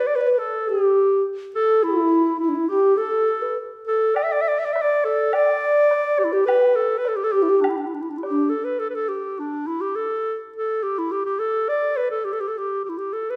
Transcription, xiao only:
0.14 B4
0.21 D5
0.27 B4
0.38 A4
0.69 G4
1.54 A4
1.84 E4
2.42 E4
2.49 D4
2.55 E4
2.69 G4
2.97 A4
3.42 B4
3.86 A4
4.82 D5
5.34 D5
6.33 G4
6.48 B4
7.34 G4
7.42 E4
7.49 G4
8.30 D4

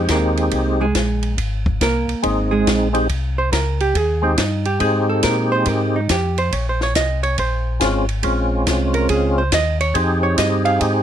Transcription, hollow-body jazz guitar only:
0.11 A#3 A#4
0.81 G#3 G#4
1.82 A#3 A#4
2.51 G#3 G#4
3.38 C5
3.53 A#4
3.81 G4
3.97 G#4
4.23 C4
4.39 D#4
4.66 G4
4.81 G#4
5.10 A4
5.24 A#4
5.52 C5
5.68 A#4
5.96 D#4
6.11 G4
6.38 C5
6.54 C#5
6.69 C5
6.83 C#5
6.96 D#5
7.23 C#5
7.39 C5
8.95 A#4
9.10 G#4
9.38 C5
9.54 D#5
9.81 C#5
9.96 C5
10.23 C#5
10.39 D#5
10.65 F5
10.81 D#5

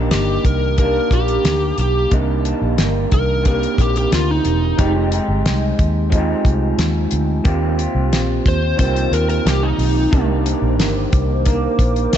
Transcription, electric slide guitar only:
0.12 G4
0.45 A#4
0.79 A#4
1.13 G4
1.81 G4
3.14 A#4
3.48 A#4
3.81 G4
3.98 G4
4.14 F4
4.31 D#4
8.48 C5
8.80 C5
9.13 A#4
9.30 A#4
9.46 G4
9.63 D#4

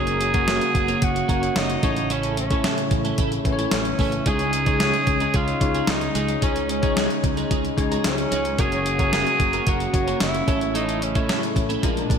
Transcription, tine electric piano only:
Already playing: A#3 C#4 F#4 C#5
0.34 A#3 C#4 F#4 C#5
1.28 A#3 C#4 F#4 C#5
1.83 A2 A3 C#4 E4 C#5
2.50 A3 C#4 E4 C#5
3.44 A3 C#4 E4 B4
3.52 C#5
4.26 C#3 G#3 C#4 D#4 C#5
4.66 G#3 C#4 D#4 C#5
5.61 G#3 C#4 D#4 C#5
6.42 C#3 G#3 C#4 D#4 C#5
6.81 G#3 C#4 D#4 C#5
7.77 G#3 C#4 D#4 C#5
8.58 A#3 C#4 F#4 C#5
8.98 A#3 C#4 F#4 C#5
9.94 A#3 C#4 F#4 C#5
10.47 A2 A3 C#4 E4 C#5
11.15 A3 C#4 E4 C#5
11.82 A#2 G#3 D4 F4 A#4
12.10 D5

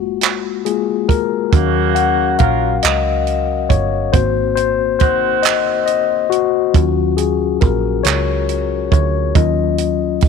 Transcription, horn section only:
1.52 C#3 A#3 F#4
2.39 F#3 F4 A#4
5.00 D#3 C4 F#4

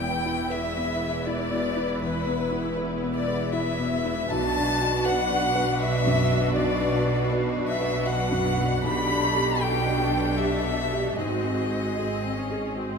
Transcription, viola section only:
Already playing: B3 E4
4.30 D4 F#4
8.84 D4 G4
9.60 D4 G4
11.17 C4 F#4
11.97 C4
12.36 C#4
12.76 C4

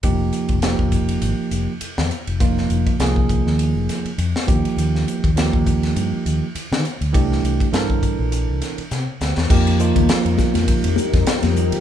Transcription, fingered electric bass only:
0.04 F1
0.49 F1
0.79 F1
1.21 G#1
1.51 F1
1.81 muted fingered electric bass stroke
1.98 F2
2.27 F1
2.70 F1
2.99 C2
3.46 D#2
3.75 F1
4.05 muted fingered electric bass stroke
4.18 F2
4.48 D#2
4.77 D#2
5.24 D#2
5.54 D#2
5.96 G2
6.13 muted fingered electric bass stroke
6.26 D#2
6.55 muted fingered electric bass stroke
6.72 D#3
7.01 D2
7.14 C2
7.43 C2
7.73 G2
8.19 A#1
8.48 C2
8.78 muted fingered electric bass stroke
8.91 C3
9.21 D2
9.37 E2
9.50 F2
9.96 D#2
10.09 muted fingered electric bass stroke
10.25 F2
10.55 F2
10.84 F2
11.14 F2
11.27 muted fingered electric bass stroke
11.43 F2
11.73 F3

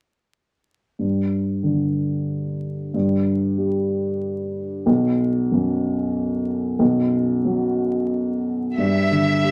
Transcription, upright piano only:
0.99 G2
1.63 D3
2.94 G2
3.58 G3
4.86 B1
5.52 F#2
6.79 B1
7.45 F#3
8.78 G2
9.11 D3
9.43 G3

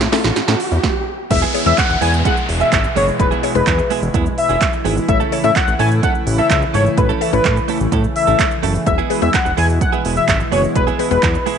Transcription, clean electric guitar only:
0.00 muted clean electric guitar stroke
0.12 A3 C#4 E4 A4
0.24 A3 C#4 E4 A4
0.48 A3 C#4 E4 A4
0.60 muted clean electric guitar stroke
0.71 muted clean electric guitar stroke
1.30 muted clean electric guitar stroke
1.42 G#3 B3 E4 G#4
1.54 G#3 B3 E4 G#4
1.66 muted clean electric guitar stroke
1.78 muted clean electric guitar stroke
1.89 muted clean electric guitar stroke
2.01 G#3 B3 E4 G#4
2.13 muted clean electric guitar stroke
2.25 G#3 B3 E4 G#4
2.37 muted clean electric guitar stroke
2.48 muted clean electric guitar stroke
2.60 G#3 B3 E4 G#4
2.84 muted clean electric guitar stroke
2.96 G#3 B3 E4 G#4
3.08 muted clean electric guitar stroke
3.19 muted clean electric guitar stroke
3.31 G#3 B3 E4 G#4
3.43 G#3 B3 E4 G#4
3.55 muted clean electric guitar stroke
3.67 muted clean electric guitar stroke
3.78 muted clean electric guitar stroke
3.90 G#3 B3 E4 G#4
4.02 muted clean electric guitar stroke
4.14 G#3 B3 E4 G#4
4.26 muted clean electric guitar stroke
4.38 muted clean electric guitar stroke
4.49 G#3 B3 E4 G#4
4.73 muted clean electric guitar stroke
4.85 G#3 B3 E4 G#4
4.97 muted clean electric guitar stroke
5.08 muted clean electric guitar stroke
5.20 A3 C#4 E4 A4
5.32 A3 C#4 E4 A4
5.44 muted clean electric guitar stroke
5.56 muted clean electric guitar stroke
5.68 muted clean electric guitar stroke
5.79 A3 C#4 E4 A4
5.91 muted clean electric guitar stroke
6.03 A3 C#4 E4 A4
6.15 muted clean electric guitar stroke
6.27 muted clean electric guitar stroke
6.38 A3 C#4 E4 A4
6.62 muted clean electric guitar stroke
6.74 A3 C#4 E4 A4
6.86 muted clean electric guitar stroke
6.98 muted clean electric guitar stroke
7.09 A3 C#4 E4 A4
7.21 A3 C#4 E4 A4
7.33 muted clean electric guitar stroke
7.45 muted clean electric guitar stroke
7.56 muted clean electric guitar stroke
7.68 A3 C#4 E4 A4
7.80 muted clean electric guitar stroke
7.92 A3 C#4 E4 A4
8.04 muted clean electric guitar stroke
8.16 muted clean electric guitar stroke
8.27 A3 C#4 E4 A4
8.51 muted clean electric guitar stroke
8.63 A3 C#4 E4 A4
8.75 muted clean electric guitar stroke
8.86 muted clean electric guitar stroke
8.98 G#3 B3 E4 G#4
9.10 G#3 B3 E4 G#4
9.22 muted clean electric guitar stroke
9.33 muted clean electric guitar stroke
9.45 muted clean electric guitar stroke
9.57 G#3 B3 E4 G#4
9.69 muted clean electric guitar stroke
9.81 muted clean electric guitar stroke
9.92 G#3 B3 E4 G#4
10.04 G#3 B3 E4 G#4
10.16 muted clean electric guitar stroke
10.40 muted clean electric guitar stroke
10.52 G#3 B3 E4 G#4
10.63 muted clean electric guitar stroke
10.75 muted clean electric guitar stroke
10.87 G#3 B3 E4 G#4
10.99 G#3 B3 E4 G#4
11.23 muted clean electric guitar stroke
11.34 muted clean electric guitar stroke
11.46 G#3 B3 E4 G#4

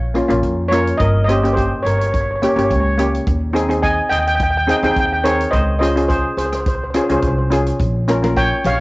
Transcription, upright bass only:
Already playing: A#1
0.31 A#1
0.43 F2
1.00 G1
1.85 G1
2.56 G1
2.71 C#2
3.27 D#2
4.11 D#2
4.83 D#2
4.96 D#2
5.53 C#2
6.37 C#2
7.09 C#2
7.22 C2
7.80 A#1
8.65 A#1

